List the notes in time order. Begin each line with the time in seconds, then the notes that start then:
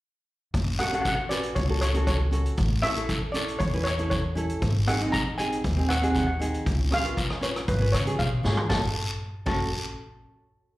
0.54 F#1, kick, closed hi-hat, long guiro
0.79 C#4 F#4 A4 F#5, cross-stick, closed hi-hat
0.88 F#5
0.92 C#4 F#4 A4 F#5, closed hi-hat
1.01 F#5, kick, closed hi-hat, short guiro
1.08 F#5
1.15 F#5
1.29 C#4 F#4 B4 D5, closed hi-hat, short guiro
1.43 closed hi-hat
1.55 C#2 C#5, kick, closed hi-hat, long guiro
1.68 C#4 F#4 A4
1.81 C#5, cross-stick, closed hi-hat, short guiro
1.94 C#4 F#4 A4, closed hi-hat
2.07 C#5, kick, closed hi-hat, short guiro
2.31 C#4 F#4 A4, closed hi-hat
2.46 closed hi-hat
2.57 A1, kick, closed hi-hat, long guiro
2.82 C#4 E4 A4 E5, cross-stick, closed hi-hat
2.95 C#4 E4 A4, closed hi-hat
3.09 kick, closed hi-hat, short guiro
3.32 C#4 E4 A4 D5, closed hi-hat, short guiro
3.48 closed hi-hat
3.59 E2 C#5, kick, closed hi-hat, long guiro
3.73 C#4 E4 B4
3.84 C#5, cross-stick, closed hi-hat, short guiro
3.98 C#4 E4 A4, closed hi-hat
4.10 C#5, kick, closed hi-hat, short guiro
4.35 C#4 E4 A4, closed hi-hat
4.49 closed hi-hat
4.62 G#1, kick, closed hi-hat, long guiro
4.87 C4 D#4 G#4 F#5, cross-stick, closed hi-hat
5.00 C4 D#4 G#4, closed hi-hat
5.12 A#5, kick, closed hi-hat, short guiro
5.38 C4 D#4 G#4 G#5, closed hi-hat, short guiro
5.52 closed hi-hat
5.64 D#2, kick, closed hi-hat, long guiro
5.77 C4 D#4 G#4
5.89 F#5, cross-stick, closed hi-hat, short guiro
5.97 F#5
6.01 C4 D#4 G#4 F#5, closed hi-hat
6.11 F#5
6.15 kick, closed hi-hat, short guiro
6.19 F#5
6.27 F#5
6.39 C4 D#4 G#4, closed hi-hat
6.54 closed hi-hat
6.66 C#2, kick, closed hi-hat, long guiro
6.91 C#4 F4 G#4 F5, cross-stick, closed hi-hat
7.03 C#4 F4 B4, closed hi-hat
7.17 kick, closed hi-hat, short guiro
7.30 cross-stick
7.41 C#4 F4 B4 C#5, closed hi-hat, short guiro
7.56 cross-stick, closed hi-hat
7.68 G#1 B4, kick, closed hi-hat, long guiro
7.80 C#4 F4 B4
7.92 C#3 C#5, cross-stick, closed hi-hat, short guiro
8.05 C#4 F4 G#4, closed hi-hat
8.19 B2 F5, kick, closed hi-hat, short guiro
8.43 G#2 C#4 F4 G#4, snare
8.57 floor tom
8.69 F#1 C#4 F#4 A4 A5, kick, snare, long guiro
9.46 F#1 C#4 F#4 A4 A5, kick, crash, long guiro